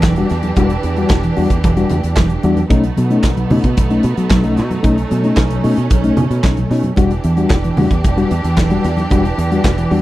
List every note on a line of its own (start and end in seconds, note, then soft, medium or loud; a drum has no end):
0.00 0.23 E1 medium
0.00 2.66 E3 medium
0.00 2.66 D4 medium
0.00 2.66 G4 medium
0.00 kick loud
0.00 snare loud
0.00 clap medium
0.00 high conga medium
0.04 0.17 E3 medium
0.16 0.30 G3 medium
0.16 0.29 D4 medium
0.16 0.30 F#4 medium
0.16 closed hi-hat soft
0.30 0.50 E2 loud
0.30 snare soft
0.30 closed hi-hat medium
0.43 closed hi-hat soft
0.43 high conga medium
0.56 0.77 E1 loud
0.56 0.70 G3 medium
0.56 0.70 D4 medium
0.56 0.70 F#4 medium
0.56 kick loud
0.56 closed hi-hat medium
0.56 muted conga soft
0.70 closed hi-hat soft
0.83 1.04 E2 medium
0.83 0.97 E3 medium
0.83 closed hi-hat medium
0.96 1.10 G3 medium
0.96 1.09 D4 medium
0.96 1.09 F#4 medium
0.96 closed hi-hat soft
1.09 1.30 E1 medium
1.09 1.16 D4 soft
1.09 1.16 F#4 medium
1.09 kick loud
1.09 snare loud
1.09 clap medium
1.09 high conga medium
1.23 1.37 E3 medium
1.23 closed hi-hat soft
1.36 1.47 E2 medium
1.36 1.49 G3 medium
1.36 1.50 D4 medium
1.36 1.50 F#4 medium
1.36 open hi-hat medium
1.50 1.60 E2 medium
1.50 kick medium
1.50 closed hi-hat medium
1.64 1.84 E1 loud
1.64 1.77 E3 medium
1.64 kick loud
1.64 closed hi-hat medium
1.64 muted conga medium
1.77 1.90 G3 medium
1.77 1.90 D4 medium
1.77 1.90 F#4 medium
1.77 closed hi-hat soft
1.90 2.00 E2 loud
1.90 1.96 D4 soft
1.90 1.96 F#4 soft
1.90 closed hi-hat medium
1.90 low conga medium
2.04 2.14 E2 medium
2.04 closed hi-hat medium
2.16 2.37 E1 medium
2.16 2.30 E3 medium
2.16 kick loud
2.16 snare loud
2.16 clap medium
2.16 high conga medium
2.30 closed hi-hat soft
2.43 2.64 E2 loud
2.43 2.57 G3 medium
2.43 2.56 D4 medium
2.43 2.56 F#4 medium
2.43 closed hi-hat medium
2.57 2.62 D4 soft
2.57 2.62 F#4 soft
2.57 closed hi-hat soft
2.57 high conga medium
2.70 2.90 B1 loud
2.70 2.83 A3 medium
2.70 6.93 A3 medium
2.70 4.81 B3 medium
2.70 2.83 C#4 medium
2.70 6.93 D#4 medium
2.70 2.83 D#4 loud
2.70 kick loud
2.70 closed hi-hat medium
2.70 muted conga soft
2.84 closed hi-hat soft
2.96 3.10 B2 medium
2.96 3.17 B2 medium
2.96 3.10 F#3 medium
2.96 closed hi-hat medium
3.10 3.23 A3 medium
3.10 3.23 C#4 medium
3.10 3.23 D#4 medium
3.10 closed hi-hat soft
3.23 3.44 B1 loud
3.23 kick loud
3.23 snare loud
3.23 clap medium
3.23 high conga medium
3.37 3.50 B2 medium
3.37 3.50 F#3 medium
3.37 closed hi-hat medium
3.50 3.60 B2 loud
3.50 3.64 A3 medium
3.50 3.64 C#4 medium
3.50 3.64 D#4 medium
3.50 open hi-hat medium
3.50 low conga medium
3.64 3.74 B2 loud
3.64 kick medium
3.64 closed hi-hat soft
3.77 3.97 B1 medium
3.77 kick loud
3.77 closed hi-hat medium
3.77 muted conga medium
3.90 4.03 A3 medium
3.90 4.03 C#4 medium
3.90 4.04 D#4 medium
3.90 closed hi-hat soft
4.03 4.14 B2 loud
4.03 closed hi-hat medium
4.03 muted conga soft
4.17 4.29 B2 medium
4.17 4.27 B2 medium
4.17 4.29 F#3 medium
4.17 closed hi-hat medium
4.30 4.59 B1 loud
4.30 4.43 B2 medium
4.30 4.43 F#3 medium
4.30 kick loud
4.30 snare loud
4.30 clap medium
4.30 high conga medium
4.43 4.56 A3 medium
4.43 4.55 C#4 medium
4.43 4.55 D#4 medium
4.43 closed hi-hat soft
4.57 4.77 B2 medium
4.57 4.62 C#4 soft
4.57 4.62 D#4 soft
4.57 snare soft
4.57 closed hi-hat medium
4.71 closed hi-hat soft
4.71 high conga medium
4.83 5.04 B1 loud
4.83 4.96 A3 medium
4.83 4.96 C#4 medium
4.83 6.95 C#4 medium
4.83 4.97 D#4 medium
4.83 kick loud
4.83 closed hi-hat medium
4.83 muted conga soft
4.98 closed hi-hat soft
5.11 5.24 B2 medium
5.11 5.31 B2 medium
5.11 5.24 F#3 medium
5.11 closed hi-hat medium
5.24 5.37 A3 medium
5.24 5.36 C#4 medium
5.24 5.36 D#4 medium
5.24 closed hi-hat soft
5.37 5.57 B1 loud
5.37 5.42 C#4 soft
5.37 5.42 D#4 medium
5.37 kick loud
5.37 snare loud
5.37 clap medium
5.37 high conga medium
5.50 5.64 B2 medium
5.50 5.64 F#3 medium
5.50 closed hi-hat medium
5.64 5.74 B2 medium
5.64 5.77 A3 medium
5.64 5.77 C#4 medium
5.64 5.77 D#4 medium
5.64 open hi-hat medium
5.77 5.87 B2 medium
5.77 closed hi-hat soft
5.90 6.10 B1 medium
5.90 6.03 B2 medium
5.90 6.03 F#3 medium
5.90 kick loud
5.90 closed hi-hat medium
5.90 muted conga soft
6.03 6.17 A3 medium
6.03 6.17 C#4 medium
6.03 6.17 D#4 medium
6.03 closed hi-hat soft
6.17 6.27 B2 loud
6.17 closed hi-hat medium
6.17 muted conga soft
6.17 low conga medium
6.30 6.40 B2 medium
6.30 closed hi-hat medium
6.43 6.64 B1 loud
6.43 6.57 C#4 medium
6.43 6.57 D#4 medium
6.43 kick loud
6.43 snare loud
6.43 clap medium
6.43 high conga medium
6.57 6.70 B2 medium
6.57 6.71 F#3 soft
6.57 closed hi-hat soft
6.71 6.90 B2 medium
6.71 6.84 C#4 medium
6.71 6.84 D#4 medium
6.71 snare soft
6.71 open hi-hat medium
6.84 closed hi-hat soft
6.84 high conga medium
6.96 7.17 E1 medium
6.96 10.02 E3 medium
6.96 7.10 G3 medium
6.96 7.10 D4 medium
6.96 10.02 D4 medium
6.96 7.11 F#4 medium
6.96 10.02 G4 medium
6.96 kick loud
6.96 closed hi-hat medium
6.96 muted conga soft
7.11 closed hi-hat soft
7.24 7.44 E2 medium
7.24 7.37 E3 medium
7.24 closed hi-hat medium
7.37 7.50 G3 medium
7.37 7.50 D4 medium
7.37 7.50 F#4 medium
7.37 closed hi-hat soft
7.50 7.70 E1 medium
7.50 kick loud
7.50 snare loud
7.50 clap medium
7.50 high conga medium
7.64 7.77 E3 medium
7.64 closed hi-hat soft
7.77 7.87 E2 medium
7.77 7.91 G3 medium
7.77 7.91 D4 medium
7.77 7.91 F#4 medium
7.77 open hi-hat medium
7.77 low conga medium
7.91 8.01 E2 medium
7.91 kick medium
7.91 closed hi-hat soft
8.04 8.24 E1 medium
8.04 kick loud
8.04 closed hi-hat medium
8.04 muted conga soft
8.17 8.30 G3 medium
8.17 8.31 D4 medium
8.17 8.31 F#4 medium
8.17 closed hi-hat soft
8.31 8.41 E2 medium
8.31 closed hi-hat medium
8.44 8.54 E2 medium
8.44 8.57 E3 medium
8.44 closed hi-hat medium
8.57 8.77 E1 medium
8.57 8.71 E3 medium
8.57 kick loud
8.57 snare loud
8.57 clap medium
8.57 high conga medium
8.70 8.84 G3 medium
8.70 8.84 D4 medium
8.70 8.84 F#4 medium
8.70 closed hi-hat soft
8.84 9.04 E2 medium
8.84 8.90 D4 soft
8.84 8.90 F#4 soft
8.84 snare soft
8.84 closed hi-hat medium
8.97 closed hi-hat soft
8.97 high conga medium
9.10 9.31 E1 loud
9.10 9.24 G3 medium
9.10 9.24 D4 medium
9.10 9.24 F#4 medium
9.10 kick loud
9.10 closed hi-hat medium
9.10 muted conga soft
9.25 closed hi-hat soft
9.38 9.58 E2 medium
9.38 9.51 E3 medium
9.38 closed hi-hat medium
9.51 9.64 G3 medium
9.51 9.64 D4 medium
9.51 9.64 F#4 medium
9.51 closed hi-hat soft
9.64 9.84 E1 medium
9.64 9.70 D4 soft
9.64 9.70 F#4 soft
9.64 kick loud
9.64 snare loud
9.64 clap medium
9.64 high conga medium
9.78 9.91 E3 medium
9.78 closed hi-hat medium
9.91 10.01 E2 loud
9.91 10.02 G3 medium
9.91 10.02 D4 medium
9.91 10.02 F#4 medium
9.91 open hi-hat medium